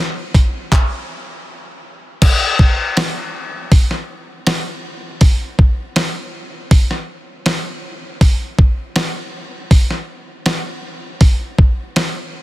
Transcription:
0.34 kick medium
0.34 open hi-hat soft
0.72 kick loud
0.72 clap medium
2.22 kick loud
2.22 open hi-hat medium
2.22 crash loud
2.59 kick medium
2.97 snare loud
2.97 open hi-hat medium
3.72 kick loud
3.72 open hi-hat medium
3.91 snare soft
4.47 snare loud
4.47 open hi-hat medium
5.21 kick loud
5.21 open hi-hat medium
5.59 kick medium
5.96 snare loud
5.96 open hi-hat medium
6.71 kick loud
6.71 open hi-hat medium
6.91 snare soft
7.46 snare loud
7.46 open hi-hat medium
8.21 kick loud
8.21 open hi-hat medium
8.59 kick medium
8.96 snare loud
8.96 open hi-hat medium
9.71 kick loud
9.71 open hi-hat medium
9.90 snare soft
10.46 snare loud
10.46 open hi-hat medium
11.21 kick loud
11.21 open hi-hat medium
11.59 kick medium
11.96 snare loud
11.96 open hi-hat medium

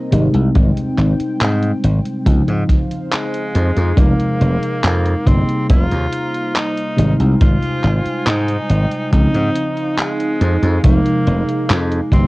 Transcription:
0.00 0.11 C3 medium
0.00 0.12 G3 medium
0.00 0.14 A#3 medium
0.00 2.23 C4 medium
0.00 0.14 D#4 medium
0.00 0.11 A#4 medium
0.00 0.11 D#5 medium
0.11 0.27 G#1 medium
0.11 2.18 C3 medium
0.11 2.18 G3 medium
0.11 2.19 G#3 medium
0.11 2.19 D#4 loud
0.11 2.25 G5 medium
0.11 closed hi-hat medium
0.34 0.49 C2 medium
0.34 closed hi-hat soft
0.55 0.70 G#1 medium
0.55 kick loud
0.55 closed hi-hat medium
0.77 closed hi-hat soft
0.98 1.13 G#1 loud
0.98 clap soft
0.98 closed hi-hat soft
1.20 muted slap bass stroke soft
1.20 closed hi-hat soft
1.41 1.71 G#2 loud
1.41 clap loud
1.41 closed hi-hat medium
1.63 closed hi-hat soft
1.84 1.99 G#1 medium
1.84 closed hi-hat medium
2.05 closed hi-hat soft
2.25 2.41 C#2 medium
2.25 3.89 C#3 medium
2.25 3.90 F3 medium
2.25 3.90 C4 medium
2.25 6.94 D#4 medium
2.25 3.90 D#4 medium
2.25 3.96 C5 medium
2.25 5.24 F5 medium
2.25 kick loud
2.25 closed hi-hat medium
2.48 2.63 G#2 medium
2.48 closed hi-hat soft
2.69 kick medium
2.69 closed hi-hat medium
2.91 closed hi-hat soft
3.12 3.99 G#3 medium
3.12 clap loud
3.12 closed hi-hat medium
3.34 closed hi-hat soft
3.55 3.70 F2 medium
3.55 closed hi-hat medium
3.77 3.91 F2 medium
3.77 closed hi-hat soft
3.96 4.13 F1 medium
3.96 5.17 C3 medium
3.96 5.18 F3 medium
3.96 5.18 G#3 medium
3.96 5.28 A#3 loud
3.96 5.19 D#4 medium
3.96 5.26 G#4 medium
3.96 kick loud
3.96 closed hi-hat medium
4.20 closed hi-hat soft
4.41 4.56 F1 loud
4.41 closed hi-hat soft
4.63 closed hi-hat soft
4.84 5.13 F2 loud
4.84 clap loud
4.84 closed hi-hat medium
5.06 closed hi-hat soft
5.25 5.41 G1 medium
5.25 6.89 C3 medium
5.25 6.90 G3 medium
5.25 6.90 A#3 medium
5.25 5.69 C4 loud
5.25 6.90 D#4 medium
5.25 10.80 C5 medium
5.25 6.97 A#5 medium
5.25 kick medium
5.25 closed hi-hat medium
5.49 closed hi-hat soft
5.69 5.85 F1 medium
5.69 6.57 F4 loud
5.69 kick loud
5.69 closed hi-hat medium
5.91 6.06 D#2 loud
5.91 closed hi-hat soft
6.12 closed hi-hat medium
6.34 closed hi-hat soft
6.55 7.14 D#4 loud
6.55 clap loud
6.55 closed hi-hat medium
6.77 closed hi-hat soft
6.96 7.13 G#1 medium
6.96 9.03 C3 medium
6.96 9.04 G3 medium
6.96 9.04 G#3 medium
6.96 9.05 D#4 loud
6.96 9.10 G5 medium
6.96 9.10 G#5 medium
6.96 closed hi-hat medium
7.20 7.34 C2 medium
7.20 closed hi-hat soft
7.41 7.56 G#1 medium
7.41 8.28 F4 loud
7.41 kick loud
7.41 closed hi-hat medium
7.63 closed hi-hat soft
7.84 7.99 G#1 loud
7.84 clap soft
7.84 closed hi-hat soft
8.06 muted slap bass stroke soft
8.06 closed hi-hat soft
8.27 8.56 G#2 loud
8.27 9.12 D#4 loud
8.27 clap loud
8.27 closed hi-hat medium
8.48 closed hi-hat soft
8.70 8.85 G#1 medium
8.70 closed hi-hat medium
8.91 closed hi-hat soft
9.11 9.27 C#2 medium
9.11 10.75 C#3 medium
9.11 10.75 F3 medium
9.11 10.76 C4 medium
9.11 9.94 D#4 loud
9.11 12.27 D#4 medium
9.11 10.76 D#4 medium
9.11 12.10 F5 medium
9.11 kick loud
9.11 closed hi-hat medium
9.34 9.49 G#2 medium
9.34 closed hi-hat soft
9.55 closed hi-hat medium
9.77 closed hi-hat soft
9.98 10.80 G#3 loud
9.98 clap loud
9.98 closed hi-hat medium
10.20 closed hi-hat soft
10.41 10.56 F2 medium
10.41 closed hi-hat medium
10.63 10.77 F2 medium
10.63 closed hi-hat soft
10.83 10.99 F1 medium
10.83 12.04 C3 medium
10.83 12.04 F3 medium
10.83 12.05 G#3 medium
10.83 11.82 A#3 loud
10.83 12.05 D#4 medium
10.83 12.12 G#4 medium
10.83 kick loud
10.83 closed hi-hat medium
11.06 closed hi-hat soft
11.27 11.42 F1 loud
11.27 closed hi-hat soft
11.49 closed hi-hat soft
11.70 11.99 F2 loud
11.70 clap loud
11.70 closed hi-hat medium
11.92 closed hi-hat soft
12.11 12.27 G1 medium
12.11 12.27 C3 medium
12.11 12.27 G3 medium
12.11 12.27 A#3 medium
12.11 12.27 C4 medium
12.11 12.27 D#4 medium
12.11 12.27 C5 medium
12.11 12.27 A#5 medium
12.11 kick medium
12.11 closed hi-hat medium

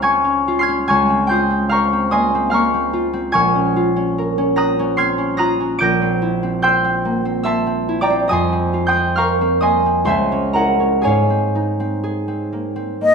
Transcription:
0.00 0.89 C#2 medium
0.00 0.40 C4 soft
0.00 0.23 C#4 soft
0.00 0.47 F4 soft
0.00 1.70 C5 soft
0.00 1.69 F5 medium
0.00 1.27 G5 medium
0.00 0.87 G#5 medium
0.00 0.90 A#5 medium
0.00 0.59 C6 medium
0.00 0.88 C#6 medium
0.00 0.91 D#6 medium
0.00 0.60 F6 medium
0.00 1.28 G6 medium
0.00 0.60 G#6 medium
0.24 0.67 C#4 soft
0.48 1.29 F4 soft
0.59 1.29 C6 medium
0.59 0.87 F6 medium
0.59 0.86 G#6 medium
0.59 3.37 C7 medium
0.68 0.92 C#4 soft
0.88 3.39 C#2 medium
0.88 2.11 G#5 medium
0.88 1.70 C#6 medium
0.88 1.68 F6 medium
0.88 3.31 G#6 medium
1.10 1.49 C4 soft
1.27 2.92 F4 soft
1.27 3.38 G5 medium
1.27 2.11 C6 medium
1.27 3.38 G6 medium
1.33 2.10 D#6 medium
1.51 1.92 C4 soft
1.69 3.38 C5 soft
1.69 2.49 F5 medium
1.69 2.51 A#5 medium
1.69 2.51 C#6 medium
1.69 2.50 F6 medium
1.93 2.33 C4 soft
2.11 2.47 A#3 soft
2.11 3.38 D#5 medium
2.11 3.32 G#5 medium
2.11 3.37 C6 medium
2.11 2.81 D#6 medium
2.35 2.73 C4 soft
2.50 2.87 A#3 soft
2.50 5.84 F5 medium
2.50 4.56 A#5 medium
2.50 3.32 F6 medium
2.54 3.32 C#6 medium
2.74 3.12 C4 soft
2.93 3.75 F4 soft
3.13 3.38 C4 soft
3.32 5.80 A#1 medium
3.32 5.84 G#5 medium
3.32 5.84 C#6 medium
3.32 4.97 F6 medium
3.32 4.97 G#6 medium
3.55 3.95 C#4 soft
3.76 5.38 F4 soft
3.96 4.37 C#4 soft
4.18 8.08 A#4 soft
4.38 4.78 C#4 soft
4.56 4.93 C4 soft
4.56 5.38 A#5 medium
4.56 5.37 D#6 medium
4.56 5.37 F#6 medium
4.56 5.36 A#6 medium
4.79 5.17 C#4 soft
4.97 5.33 C4 soft
4.97 6.62 C6 medium
4.97 5.84 F6 medium
4.97 5.83 G#6 medium
4.97 5.67 C7 medium
5.18 5.59 C#4 soft
5.37 5.84 F4 soft
5.37 8.01 A#5 medium
5.37 5.83 D#6 medium
5.37 5.83 F#6 medium
5.37 5.79 A#6 medium
5.60 5.84 C#4 soft
5.78 8.35 A#1 medium
5.78 8.00 D6 medium
5.78 6.61 G6 medium
5.78 9.72 A#6 medium
5.78 8.34 D7 loud
6.02 6.42 C4 soft
6.22 7.87 E4 soft
6.43 6.83 C4 soft
6.62 10.05 C5 soft
6.62 8.01 G5 medium
6.62 7.44 C6 medium
6.62 7.42 E6 medium
6.62 8.85 G6 medium
6.84 7.24 C4 soft
7.05 7.40 A#3 soft
7.25 7.65 C4 soft
7.43 7.82 A#3 soft
7.43 8.34 E5 medium
7.43 8.34 A5 medium
7.43 8.29 C6 medium
7.43 8.33 E6 medium
7.67 8.09 C4 soft
7.89 8.35 E4 medium
8.01 8.34 D5 medium
8.01 8.87 G5 medium
8.01 9.16 A#5 medium
8.01 8.34 D6 medium
8.10 8.51 C4 soft
8.28 10.12 F2 medium
8.28 9.61 D#5 medium
8.28 9.61 G#5 medium
8.28 8.87 D#6 medium
8.33 8.87 C6 medium
8.53 8.95 C4 soft
8.73 10.12 F4 soft
8.87 10.12 G5 medium
8.87 9.61 C6 medium
8.87 9.59 D#6 medium
8.87 10.11 G6 medium
8.96 9.40 C4 soft
9.16 10.54 A#4 soft
9.16 10.12 F5 medium
9.16 10.52 A#5 medium
9.16 11.09 C#6 medium
9.16 10.11 F6 medium
9.41 9.85 C4 soft
9.61 10.01 A#3 soft
9.61 10.12 D#5 medium
9.61 10.06 G#5 medium
9.61 10.04 C6 medium
9.61 10.11 D#6 medium
9.86 10.13 C4 soft
10.05 11.09 C#2 medium
10.05 13.15 C5 medium
10.05 11.09 E5 medium
10.05 10.89 C6 medium
10.09 11.02 G#5 medium
10.32 10.79 C#4 soft
10.53 11.09 E4 soft
10.53 13.15 A#4 soft
10.53 13.15 D#5 soft
10.53 11.09 F#5 soft
10.53 13.15 A#5 medium
10.80 11.09 C#4 soft
11.01 13.15 G#2 soft
11.01 12.02 G#4 medium
11.01 13.15 C#5 medium
11.01 13.15 G#5 medium
11.07 13.15 F5 soft
11.30 11.79 C4 soft
11.55 13.15 D#4 soft
11.80 12.27 C4 soft
12.04 13.15 G#4 soft
12.28 12.75 C4 soft
12.52 12.95 A#3 soft
12.76 13.15 C4 soft
13.01 13.15 A#3 soft
13.01 13.15 D#5 medium

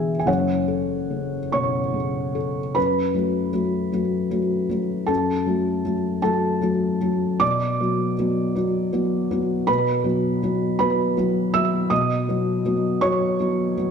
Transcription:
0.00 0.23 E1 medium
0.00 0.23 E2 medium
0.00 0.30 D3 soft
0.00 0.30 E3 medium
0.00 0.30 G#4 medium
0.00 0.16 E5 medium
0.00 0.18 G#5 loud
0.19 0.27 G#5 medium
0.26 2.72 F#1 medium
0.26 2.72 F#2 medium
0.26 1.52 C#5 medium
0.26 2.36 F#5 medium
0.68 1.37 A4 soft
1.10 1.78 C#3 soft
1.52 1.95 B2 soft
1.52 2.72 C#5 medium
1.52 2.75 C#6 medium
1.94 2.60 C#3 soft
2.35 2.75 A4 soft
2.75 3.13 F#2 medium
2.75 5.05 B4 medium
2.75 5.08 B5 medium
3.14 3.50 F#3 soft
3.14 3.50 A3 soft
3.14 3.50 F#4 soft
3.53 3.88 F#3 soft
3.53 3.88 A3 soft
3.53 3.89 F#4 soft
3.92 4.28 F#3 soft
3.92 4.28 A3 soft
3.92 4.28 F#4 soft
4.30 4.66 F#3 soft
4.30 4.66 A3 soft
4.30 4.66 F#4 soft
4.69 5.04 F#3 soft
4.69 5.04 A3 soft
4.69 5.05 F#4 soft
5.06 5.45 F#2 medium
5.06 6.18 A4 medium
5.06 6.21 A5 medium
5.46 5.81 F#3 soft
5.46 5.81 A3 soft
5.46 5.81 F#4 soft
5.85 6.19 F#3 soft
5.85 6.19 A3 soft
5.85 6.19 F#4 soft
6.22 6.58 F#3 soft
6.22 6.58 A3 soft
6.22 6.58 F#4 soft
6.22 7.37 A4 medium
6.22 7.41 A5 medium
6.61 6.97 F#3 soft
6.61 6.97 A3 soft
6.61 6.98 F#4 medium
7.01 7.37 F#3 soft
7.01 7.37 A3 soft
7.01 7.37 F#4 soft
7.40 7.78 B2 medium
7.40 9.64 D5 medium
7.40 9.67 D6 loud
7.80 8.14 F#3 soft
7.80 8.14 B3 soft
7.80 8.14 F#4 soft
8.18 8.52 F#3 soft
8.18 8.52 B3 soft
8.18 8.52 F#4 soft
8.55 8.89 F#3 soft
8.55 8.89 B3 soft
8.55 8.90 F#4 medium
8.92 9.27 F#3 soft
8.92 9.27 B3 medium
8.92 9.27 F#4 medium
9.31 9.64 F#3 soft
9.31 9.64 B3 soft
9.31 9.64 F#4 medium
9.67 10.04 B2 medium
9.67 10.76 B4 medium
9.67 10.77 B5 loud
10.04 10.38 F#3 soft
10.04 10.38 B3 medium
10.04 10.38 F#4 medium
10.43 10.76 F#3 medium
10.43 10.76 B3 medium
10.43 10.77 F#4 medium
10.79 11.13 F#3 soft
10.79 11.14 B3 soft
10.79 11.14 F#4 medium
10.79 11.15 B4 medium
10.79 11.17 B5 medium
11.17 11.50 F#3 medium
11.17 11.51 B3 soft
11.17 11.51 F#4 medium
11.53 11.87 F#3 soft
11.53 11.87 B3 soft
11.53 11.87 F#4 medium
11.53 11.88 E5 medium
11.53 11.91 E6 loud
11.90 12.26 B2 medium
11.90 12.98 D#5 medium
11.90 13.01 D#6 medium
12.28 12.61 F#3 soft
12.28 12.61 B3 soft
12.28 12.62 F#4 medium
12.65 12.98 F#3 soft
12.65 12.99 B3 soft
12.65 12.99 F#4 medium
13.01 13.36 F#3 soft
13.01 13.36 B3 soft
13.01 13.36 F#4 medium
13.01 13.91 C#5 medium
13.01 13.91 C#6 loud
13.40 13.74 F#3 soft
13.40 13.73 B3 soft
13.40 13.74 F#4 medium
13.77 13.91 F#3 soft
13.77 13.91 B3 soft
13.77 13.91 F#4 soft

